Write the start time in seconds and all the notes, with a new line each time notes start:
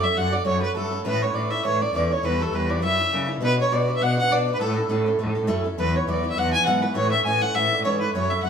Already playing: F#2 A4 B4 D5
0.02 A3 C#4 F#4 E5
0.16 F#2 F#3 A3 C#4 F#4 F#5
0.31 A3 C#4 F#4 D5
0.45 F#2 F#3 A3 C#4 F#4 C#5
0.59 A3 C#4 F#4 B4
0.74 G2 F#3 A3 C#4 F#4 A4
0.91 A3 C#4 F#4
1.05 A2 E3 A3 C#4 E4 B4
1.21 A3 C#4 E4 C#5
1.33 A2 E3 A3 C#4 E4 D5
1.50 A3 C#4 E4 E5
1.64 A2 E3 A3 C#4 E4 C#5
1.80 A3 C#4 E4 D5
1.93 E2 E3 A3 C#4 E4 D5
2.10 A3 C#4 E4 C#5
2.23 E2 E3 G3 B3 E4 B4
2.40 G3 B3 E4 A4
2.52 E2 E3 G3 B3 E4 B4
2.69 G3 B3 E4 D5
2.81 F#2 F#3 A#3 C#4 E4 E5
2.99 A#3 C#4 E4
3.12 C#3 F#3 A#3 C#4 E4
3.28 A#3 C#4 E4
3.41 B2 B3 D4 F#4 B4
3.45 B4
3.57 D4 F#4 C#5
3.61 C#5
3.71 B2 B3 D4 F#4 B4 D5
3.88 D4 F#4 B4
3.93 E5
4.01 B2 B3 D4 F#4 B4 F#5
4.16 D4 F#4 B4 F#5
4.24 B2
4.30 B2 B3 D4 F#4 B4 D5
4.46 D4 F#4 B4
4.53 B4
4.60 A2 A3 C#4 E4 A4
4.76 C#4 E4 A4
4.89 A2 A3 C#4 E4 A4
5.06 C#4 E4 A4
5.19 A2 A3 C#4 E4 A4
5.35 C#4 E4 A4
5.42 A2
5.47 F#2 A2 A3 C#4 E4 A4
5.64 C#4 E4 A4
5.78 E2 E3 F#3 B3 E4 F#4 B4
5.94 B3 E4 F#4 C#5
6.07 E2 E3 F#3 B3 E4 F#4 D5
6.23 B3 E4 F#4
6.30 E5
6.36 E2 F#3 B3 E4 F#4 F#5
6.52 B3 E4 F#4 G#5
6.61 E3 F#5
6.65 G#2 E3 F#3 B3 E4 F#4 F#5
6.81 B3 E4 F#4 B4
6.94 A2 E3 A3 C#4 E4 C#5
7.12 A3 C#4 E4 E5
7.25 A2 E3 A3 C#4 E4 G#5
7.41 A3 C#4 E4 F#5
7.54 A2 E3 A3 C#4 E4 E5
7.67 E4 E5
7.72 A3 C#4 D5
7.78 A2
7.84 G#2 A2 E3 A3 C#4 E4 C#5
8.00 A3 C#4 E4 B4
8.13 F#2 F#3 A3 C#4 F#4 C#5
8.30 A3 C#4 F#4 E5
8.43 F#2 F#3 A3 C#4 F#4 F#5